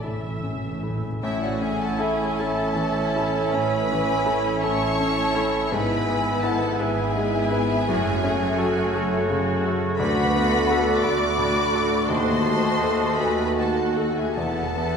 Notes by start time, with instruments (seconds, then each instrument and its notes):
Already playing: double bass section A1, cello section A2, grand piano E3 C#4 E4 A4, french horn section A3 C#4, violin section C#4
0.02 grand piano E4 A4, viola section E5
0.08 timpani A2
0.15 timpani A2
0.23 timpani A2
0.31 timpani A2
0.40 timpani A2, grand piano C#4
0.48 timpani A2
0.56 timpani A2
0.65 timpani A2
0.72 timpani A2
0.81 timpani A2, grand piano E4 A4
0.89 timpani A2
0.97 timpani A2
1.04 timpani A2
1.12 timpani A2
1.22 double bass section A1, cello section A2, grand piano A2, french horn section A3 C#4, bassoon C#4, violin section E4 E5, clarinet E4, flute section C#5, oboe E5
1.41 violin section F#4 F#5, flute section D5
1.60 grand piano C#4, viola section C#4 E4, violin section G#4 G#5, flute section E5
1.80 violin section A4 A5, flute section F#5
1.99 grand piano E4 A4, violin section G#4 G#5, flute section E5
2.37 double bass section A1, cello section A2, french horn section A3 C#4, grand piano E4 A4, violin section A4 A5, flute section E5
2.75 grand piano E3, viola section C#4 E4
3.16 grand piano E4 A4
3.50 double bass section A1, cello section A2, grand piano C#4, violin section B4 B5
3.54 flute section G#5
3.91 grand piano E3, viola section C#4 E4
4.26 grand piano E4 A4
4.60 double bass section A1, cello section A2, french horn section A3 C#4, grand piano E4 A4, violin section C#5 C#6, flute section A5
4.99 viola section C#4 E4, grand piano C#4
5.35 grand piano E4 A4
5.65 violin section C#6
5.71 double bass section G#1, grand piano G#2, cello section G#2, viola section B3 E4, french horn section B3 E4, bassoon B3, clarinet E4, violin section B4 B5, oboe E5, flute section G#5
6.08 viola section B3 E4, grand piano B3
6.42 grand piano E4 B4, violin section A4 A5, flute section F#5
6.78 double bass section G#1, cello section G#2, french horn section B3 E4, grand piano E4 B4, violin section G#4 G#5, flute section E5
7.15 grand piano G#3, viola section B3 E4
7.51 grand piano E4 B4
7.87 double bass section F#1, grand piano F#2, cello section F#2, bassoon A3, viola section A3 F#4, french horn section A3 F#4, clarinet F#4, oboe C#5
8.23 viola section A3 F#4, grand piano C#4
8.58 grand piano F#4 A4
8.93 double bass section F#1, cello section F#2, grand piano F#4 A4
9.28 grand piano C#3, viola section A3 F#4
9.67 grand piano F#4 A4
9.98 grand piano D2, double bass section D2, cello section D2, french horn section A3 F#4, viola section A3 F#4, violin section B4 B5, oboe D5, flute section F#5
10.35 viola section A3 F#4, grand piano B3
10.70 grand piano F#4 A4
11.02 cello section D2, double bass section D2, french horn section A3 F#4, grand piano F#4 A4, violin section D5 D6, flute section B5
11.38 grand piano A2, viola section A3 F#4
11.75 grand piano F#4 A4
12.08 double bass section D#2, cello section D#2, grand piano D#2, bassoon A3, viola section A3 F#4, french horn section A3 F#4, clarinet F#4, violin section C5 C6, oboe D#5, flute section A5
12.46 grand piano A3, viola section A3 F#4
12.82 grand piano F#4 A4
13.17 double bass section D#2, cello section D#2, grand piano F#4 A4, violin section B4 B5, flute section G#5
13.56 grand piano D#3, viola section A3 F#4, violin section A4 A5, flute section F#5
13.96 grand piano F#4 A4, violin section F#4 F#5, flute section D#5
14.16 violin section G#4 G#5, flute section E5
14.34 double bass section E1, cello section E2, grand piano E2, viola section B3 E4, clarinet E4, oboe E5, flute section F#5, violin section A5
14.38 bassoon B3, french horn section B3 E4, violin section A4
14.77 grand piano B3, viola section B3 E4